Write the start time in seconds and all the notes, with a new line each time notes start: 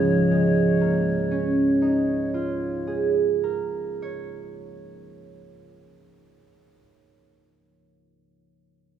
Already playing: C#2 G#2 C#3 F3 C#5
0.31 G#3
0.81 A#3
1.31 C#4
1.82 D#4
2.34 F4
2.87 G#4
3.44 A#4
4.02 C#5